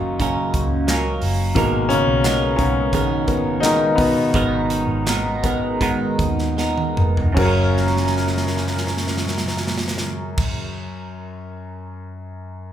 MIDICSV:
0, 0, Header, 1, 5, 480
1, 0, Start_track
1, 0, Key_signature, 6, "major"
1, 0, Tempo, 686499
1, 1093, Time_signature, 4, 2, 24, 8
1, 2540, Tempo, 726392
1, 3980, Tempo, 776197
1, 4940, Tempo, 802139
1, 8149, End_track
2, 0, Start_track
2, 0, Title_t, "Clean electric guitar"
2, 0, Program_c, 0, 27
2, 0, Note_on_c, 0, 54, 65
2, 0, Note_on_c, 0, 58, 59
2, 0, Note_on_c, 0, 61, 66
2, 0, Note_on_c, 0, 70, 65
2, 135, Note_off_c, 0, 54, 0
2, 135, Note_on_c, 0, 42, 78
2, 140, Note_off_c, 0, 61, 0
2, 140, Note_on_c, 0, 49, 88
2, 143, Note_off_c, 0, 58, 0
2, 143, Note_on_c, 0, 54, 71
2, 146, Note_on_c, 0, 58, 80
2, 149, Note_off_c, 0, 70, 0
2, 149, Note_on_c, 0, 61, 87
2, 152, Note_on_c, 0, 70, 85
2, 601, Note_off_c, 0, 54, 0
2, 610, Note_on_c, 0, 54, 58
2, 614, Note_off_c, 0, 42, 0
2, 616, Note_off_c, 0, 49, 0
2, 617, Note_off_c, 0, 58, 0
2, 618, Note_off_c, 0, 61, 0
2, 619, Note_on_c, 0, 58, 64
2, 626, Note_on_c, 0, 61, 71
2, 630, Note_off_c, 0, 70, 0
2, 632, Note_on_c, 0, 70, 65
2, 1089, Note_on_c, 0, 44, 78
2, 1090, Note_off_c, 0, 54, 0
2, 1093, Note_on_c, 0, 51, 77
2, 1096, Note_off_c, 0, 58, 0
2, 1097, Note_on_c, 0, 56, 80
2, 1098, Note_off_c, 0, 61, 0
2, 1099, Note_on_c, 0, 59, 80
2, 1101, Note_on_c, 0, 63, 96
2, 1103, Note_off_c, 0, 70, 0
2, 1106, Note_on_c, 0, 70, 83
2, 1554, Note_off_c, 0, 56, 0
2, 1562, Note_off_c, 0, 59, 0
2, 1562, Note_on_c, 0, 56, 58
2, 1569, Note_off_c, 0, 44, 0
2, 1570, Note_on_c, 0, 59, 64
2, 1571, Note_off_c, 0, 51, 0
2, 1571, Note_off_c, 0, 63, 0
2, 1579, Note_on_c, 0, 63, 68
2, 1582, Note_off_c, 0, 70, 0
2, 1585, Note_on_c, 0, 70, 74
2, 2047, Note_on_c, 0, 44, 84
2, 2048, Note_off_c, 0, 56, 0
2, 2049, Note_off_c, 0, 59, 0
2, 2052, Note_on_c, 0, 51, 70
2, 2053, Note_off_c, 0, 63, 0
2, 2055, Note_on_c, 0, 56, 73
2, 2058, Note_on_c, 0, 59, 88
2, 2060, Note_off_c, 0, 70, 0
2, 2061, Note_on_c, 0, 63, 83
2, 2063, Note_on_c, 0, 70, 85
2, 2526, Note_off_c, 0, 56, 0
2, 2533, Note_off_c, 0, 59, 0
2, 2534, Note_on_c, 0, 56, 63
2, 2538, Note_off_c, 0, 44, 0
2, 2541, Note_off_c, 0, 51, 0
2, 2541, Note_off_c, 0, 63, 0
2, 2542, Note_on_c, 0, 59, 57
2, 2549, Note_on_c, 0, 63, 66
2, 2553, Note_off_c, 0, 70, 0
2, 2556, Note_on_c, 0, 70, 60
2, 3004, Note_off_c, 0, 56, 0
2, 3005, Note_on_c, 0, 44, 77
2, 3008, Note_off_c, 0, 59, 0
2, 3010, Note_off_c, 0, 63, 0
2, 3010, Note_on_c, 0, 51, 77
2, 3012, Note_on_c, 0, 56, 84
2, 3015, Note_on_c, 0, 59, 91
2, 3018, Note_off_c, 0, 70, 0
2, 3018, Note_on_c, 0, 63, 84
2, 3021, Note_on_c, 0, 70, 77
2, 3475, Note_off_c, 0, 56, 0
2, 3483, Note_on_c, 0, 56, 67
2, 3484, Note_off_c, 0, 59, 0
2, 3487, Note_off_c, 0, 44, 0
2, 3490, Note_off_c, 0, 51, 0
2, 3490, Note_off_c, 0, 63, 0
2, 3492, Note_on_c, 0, 59, 59
2, 3498, Note_on_c, 0, 63, 66
2, 3501, Note_off_c, 0, 70, 0
2, 3503, Note_on_c, 0, 70, 64
2, 3720, Note_off_c, 0, 70, 0
2, 3728, Note_on_c, 0, 70, 46
2, 3729, Note_off_c, 0, 63, 0
2, 3730, Note_off_c, 0, 56, 0
2, 3735, Note_off_c, 0, 59, 0
2, 3737, Note_on_c, 0, 63, 42
2, 3744, Note_on_c, 0, 59, 39
2, 3749, Note_on_c, 0, 56, 36
2, 3976, Note_off_c, 0, 56, 0
2, 3977, Note_off_c, 0, 59, 0
2, 3977, Note_on_c, 0, 44, 75
2, 3978, Note_off_c, 0, 70, 0
2, 3979, Note_on_c, 0, 51, 67
2, 3980, Note_off_c, 0, 63, 0
2, 3983, Note_on_c, 0, 56, 86
2, 3985, Note_on_c, 0, 59, 78
2, 3988, Note_on_c, 0, 63, 91
2, 3990, Note_on_c, 0, 70, 77
2, 4441, Note_off_c, 0, 56, 0
2, 4448, Note_on_c, 0, 56, 57
2, 4449, Note_off_c, 0, 59, 0
2, 4452, Note_off_c, 0, 44, 0
2, 4452, Note_off_c, 0, 51, 0
2, 4454, Note_off_c, 0, 63, 0
2, 4456, Note_on_c, 0, 59, 65
2, 4461, Note_on_c, 0, 63, 71
2, 4466, Note_off_c, 0, 70, 0
2, 4468, Note_on_c, 0, 70, 68
2, 4916, Note_on_c, 0, 42, 67
2, 4939, Note_off_c, 0, 56, 0
2, 4940, Note_on_c, 0, 49, 81
2, 4942, Note_off_c, 0, 59, 0
2, 4945, Note_off_c, 0, 63, 0
2, 4959, Note_on_c, 0, 54, 81
2, 4975, Note_on_c, 0, 58, 82
2, 4993, Note_on_c, 0, 61, 82
2, 5005, Note_off_c, 0, 70, 0
2, 5008, Note_on_c, 0, 70, 80
2, 7011, Note_off_c, 0, 42, 0
2, 7035, Note_off_c, 0, 49, 0
2, 7053, Note_off_c, 0, 54, 0
2, 7070, Note_off_c, 0, 58, 0
2, 7087, Note_off_c, 0, 61, 0
2, 7102, Note_off_c, 0, 70, 0
2, 8149, End_track
3, 0, Start_track
3, 0, Title_t, "Grand piano"
3, 0, Program_c, 1, 0
3, 0, Control_c, 1, 64, 127
3, 0, Note_on_c, 1, 51, 61
3, 0, Note_on_c, 1, 54, 67
3, 0, Note_on_c, 1, 58, 43
3, 0, Note_on_c, 1, 61, 62
3, 0, Note_on_c, 1, 63, 87
3, 0, Note_on_c, 1, 65, 85
3, 0, Note_on_c, 1, 66, 88
3, 1083, Note_off_c, 1, 58, 0
3, 1083, Note_on_c, 1, 58, 80
3, 1091, Note_on_c, 1, 56, 59
3, 1093, Note_on_c, 1, 70, 48
3, 1097, Note_on_c, 1, 47, 59
3, 1101, Control_c, 1, 64, 0
3, 1103, Note_off_c, 1, 65, 0
3, 1105, Note_off_c, 1, 51, 0
3, 1106, Note_off_c, 1, 54, 0
3, 1106, Note_off_c, 1, 61, 0
3, 1106, Note_off_c, 1, 66, 0
3, 1108, Note_off_c, 1, 63, 0
3, 1242, Control_c, 1, 64, 127
3, 1320, Note_on_c, 1, 61, 105
3, 1334, Note_off_c, 1, 58, 0
3, 1338, Note_on_c, 1, 49, 74
3, 1782, Note_off_c, 1, 56, 0
3, 1782, Note_off_c, 1, 61, 0
3, 1783, Note_off_c, 1, 70, 0
3, 1785, Note_off_c, 1, 47, 0
3, 1786, Note_off_c, 1, 49, 0
3, 1792, Note_on_c, 1, 61, 89
3, 1810, Note_on_c, 1, 49, 68
3, 2289, Note_on_c, 1, 56, 42
3, 2290, Note_on_c, 1, 70, 46
3, 2294, Note_on_c, 1, 59, 54
3, 2513, Note_off_c, 1, 49, 0
3, 2513, Note_off_c, 1, 56, 0
3, 2513, Note_off_c, 1, 70, 0
3, 2515, Note_off_c, 1, 59, 0
3, 2520, Note_on_c, 1, 63, 100
3, 2541, Note_on_c, 1, 51, 79
3, 2553, Note_off_c, 1, 61, 0
3, 2753, Note_on_c, 1, 59, 86
3, 2758, Note_off_c, 1, 51, 0
3, 2772, Note_off_c, 1, 63, 0
3, 2777, Note_on_c, 1, 47, 55
3, 3725, Note_off_c, 1, 59, 0
3, 3727, Note_on_c, 1, 56, 56
3, 3731, Note_on_c, 1, 70, 45
3, 3735, Note_on_c, 1, 59, 54
3, 4055, Note_off_c, 1, 56, 0
3, 4057, Note_off_c, 1, 70, 0
3, 4059, Note_off_c, 1, 59, 0
3, 4430, Note_off_c, 1, 47, 0
3, 4928, Note_on_c, 1, 61, 79
3, 4940, Note_on_c, 1, 42, 75
3, 4940, Note_on_c, 1, 66, 67
3, 4950, Control_c, 1, 64, 0
3, 4952, Note_on_c, 1, 70, 82
3, 5049, Control_c, 1, 64, 127
3, 6806, Note_off_c, 1, 61, 0
3, 6812, Note_off_c, 1, 66, 0
3, 6813, Note_off_c, 1, 42, 0
3, 6819, Note_off_c, 1, 70, 0
3, 8149, End_track
4, 0, Start_track
4, 0, Title_t, "Picked electric bass"
4, 0, Program_c, 2, 34
4, 0, Note_on_c, 2, 30, 83
4, 350, Note_off_c, 2, 30, 0
4, 377, Note_on_c, 2, 37, 76
4, 826, Note_off_c, 2, 37, 0
4, 855, Note_on_c, 2, 30, 70
4, 1076, Note_off_c, 2, 30, 0
4, 1090, Note_on_c, 2, 32, 96
4, 1424, Note_off_c, 2, 32, 0
4, 1448, Note_on_c, 2, 35, 79
4, 1784, Note_off_c, 2, 35, 0
4, 1809, Note_on_c, 2, 35, 81
4, 2747, Note_off_c, 2, 35, 0
4, 3009, Note_on_c, 2, 32, 88
4, 3343, Note_off_c, 2, 32, 0
4, 3361, Note_on_c, 2, 32, 101
4, 4187, Note_off_c, 2, 32, 0
4, 4214, Note_on_c, 2, 39, 86
4, 4670, Note_off_c, 2, 39, 0
4, 4694, Note_on_c, 2, 29, 83
4, 4923, Note_off_c, 2, 29, 0
4, 4942, Note_on_c, 2, 30, 90
4, 6814, Note_off_c, 2, 30, 0
4, 8149, End_track
5, 0, Start_track
5, 0, Title_t, "Drums"
5, 137, Note_on_c, 9, 36, 77
5, 141, Note_on_c, 9, 42, 74
5, 207, Note_off_c, 9, 36, 0
5, 211, Note_off_c, 9, 42, 0
5, 376, Note_on_c, 9, 42, 65
5, 377, Note_on_c, 9, 36, 71
5, 446, Note_off_c, 9, 42, 0
5, 447, Note_off_c, 9, 36, 0
5, 615, Note_on_c, 9, 42, 75
5, 616, Note_on_c, 9, 38, 105
5, 623, Note_on_c, 9, 39, 83
5, 685, Note_off_c, 9, 42, 0
5, 686, Note_off_c, 9, 38, 0
5, 693, Note_off_c, 9, 39, 0
5, 850, Note_on_c, 9, 46, 71
5, 920, Note_off_c, 9, 46, 0
5, 1089, Note_on_c, 9, 42, 79
5, 1091, Note_on_c, 9, 36, 100
5, 1159, Note_off_c, 9, 42, 0
5, 1161, Note_off_c, 9, 36, 0
5, 1330, Note_on_c, 9, 42, 73
5, 1400, Note_off_c, 9, 42, 0
5, 1567, Note_on_c, 9, 42, 78
5, 1569, Note_on_c, 9, 38, 112
5, 1576, Note_on_c, 9, 39, 87
5, 1637, Note_off_c, 9, 42, 0
5, 1639, Note_off_c, 9, 38, 0
5, 1646, Note_off_c, 9, 39, 0
5, 1808, Note_on_c, 9, 42, 56
5, 1809, Note_on_c, 9, 36, 72
5, 1878, Note_off_c, 9, 42, 0
5, 1879, Note_off_c, 9, 36, 0
5, 2048, Note_on_c, 9, 36, 71
5, 2049, Note_on_c, 9, 42, 67
5, 2118, Note_off_c, 9, 36, 0
5, 2119, Note_off_c, 9, 42, 0
5, 2291, Note_on_c, 9, 42, 58
5, 2293, Note_on_c, 9, 36, 71
5, 2361, Note_off_c, 9, 42, 0
5, 2363, Note_off_c, 9, 36, 0
5, 2539, Note_on_c, 9, 42, 83
5, 2540, Note_on_c, 9, 38, 102
5, 2546, Note_on_c, 9, 39, 84
5, 2605, Note_off_c, 9, 42, 0
5, 2606, Note_off_c, 9, 38, 0
5, 2612, Note_off_c, 9, 39, 0
5, 2769, Note_on_c, 9, 46, 66
5, 2770, Note_on_c, 9, 36, 88
5, 2835, Note_off_c, 9, 46, 0
5, 2836, Note_off_c, 9, 36, 0
5, 3007, Note_on_c, 9, 36, 90
5, 3007, Note_on_c, 9, 42, 77
5, 3073, Note_off_c, 9, 36, 0
5, 3073, Note_off_c, 9, 42, 0
5, 3246, Note_on_c, 9, 42, 81
5, 3312, Note_off_c, 9, 42, 0
5, 3487, Note_on_c, 9, 42, 73
5, 3489, Note_on_c, 9, 38, 109
5, 3495, Note_on_c, 9, 39, 84
5, 3553, Note_off_c, 9, 42, 0
5, 3555, Note_off_c, 9, 38, 0
5, 3561, Note_off_c, 9, 39, 0
5, 3732, Note_on_c, 9, 36, 79
5, 3732, Note_on_c, 9, 42, 63
5, 3798, Note_off_c, 9, 36, 0
5, 3798, Note_off_c, 9, 42, 0
5, 3977, Note_on_c, 9, 36, 70
5, 3981, Note_on_c, 9, 42, 67
5, 4039, Note_off_c, 9, 36, 0
5, 4042, Note_off_c, 9, 42, 0
5, 4213, Note_on_c, 9, 42, 58
5, 4214, Note_on_c, 9, 36, 75
5, 4275, Note_off_c, 9, 42, 0
5, 4276, Note_off_c, 9, 36, 0
5, 4336, Note_on_c, 9, 38, 30
5, 4397, Note_off_c, 9, 38, 0
5, 4455, Note_on_c, 9, 38, 54
5, 4517, Note_off_c, 9, 38, 0
5, 4576, Note_on_c, 9, 48, 58
5, 4637, Note_off_c, 9, 48, 0
5, 4698, Note_on_c, 9, 45, 89
5, 4759, Note_off_c, 9, 45, 0
5, 4821, Note_on_c, 9, 43, 82
5, 4883, Note_off_c, 9, 43, 0
5, 4942, Note_on_c, 9, 36, 93
5, 4944, Note_on_c, 9, 49, 84
5, 5002, Note_off_c, 9, 36, 0
5, 5004, Note_off_c, 9, 49, 0
5, 5184, Note_on_c, 9, 38, 40
5, 5243, Note_off_c, 9, 38, 0
5, 5243, Note_on_c, 9, 38, 45
5, 5302, Note_off_c, 9, 38, 0
5, 5302, Note_on_c, 9, 38, 49
5, 5362, Note_off_c, 9, 38, 0
5, 5363, Note_on_c, 9, 38, 49
5, 5423, Note_off_c, 9, 38, 0
5, 5424, Note_on_c, 9, 38, 52
5, 5483, Note_off_c, 9, 38, 0
5, 5484, Note_on_c, 9, 38, 52
5, 5543, Note_off_c, 9, 38, 0
5, 5543, Note_on_c, 9, 38, 49
5, 5603, Note_off_c, 9, 38, 0
5, 5604, Note_on_c, 9, 38, 55
5, 5663, Note_off_c, 9, 38, 0
5, 5664, Note_on_c, 9, 38, 52
5, 5724, Note_off_c, 9, 38, 0
5, 5724, Note_on_c, 9, 38, 55
5, 5784, Note_off_c, 9, 38, 0
5, 5784, Note_on_c, 9, 38, 57
5, 5842, Note_off_c, 9, 38, 0
5, 5842, Note_on_c, 9, 38, 64
5, 5902, Note_off_c, 9, 38, 0
5, 5903, Note_on_c, 9, 38, 61
5, 5963, Note_off_c, 9, 38, 0
5, 5964, Note_on_c, 9, 38, 67
5, 6022, Note_off_c, 9, 38, 0
5, 6022, Note_on_c, 9, 38, 66
5, 6082, Note_off_c, 9, 38, 0
5, 6085, Note_on_c, 9, 38, 65
5, 6144, Note_off_c, 9, 38, 0
5, 6144, Note_on_c, 9, 38, 69
5, 6204, Note_off_c, 9, 38, 0
5, 6205, Note_on_c, 9, 38, 72
5, 6263, Note_off_c, 9, 38, 0
5, 6263, Note_on_c, 9, 38, 66
5, 6322, Note_off_c, 9, 38, 0
5, 6322, Note_on_c, 9, 38, 74
5, 6382, Note_off_c, 9, 38, 0
5, 6383, Note_on_c, 9, 38, 80
5, 6443, Note_off_c, 9, 38, 0
5, 6444, Note_on_c, 9, 38, 76
5, 6504, Note_off_c, 9, 38, 0
5, 6505, Note_on_c, 9, 38, 85
5, 6564, Note_off_c, 9, 38, 0
5, 6743, Note_on_c, 9, 36, 115
5, 6743, Note_on_c, 9, 49, 87
5, 6803, Note_off_c, 9, 36, 0
5, 6803, Note_off_c, 9, 49, 0
5, 8149, End_track
0, 0, End_of_file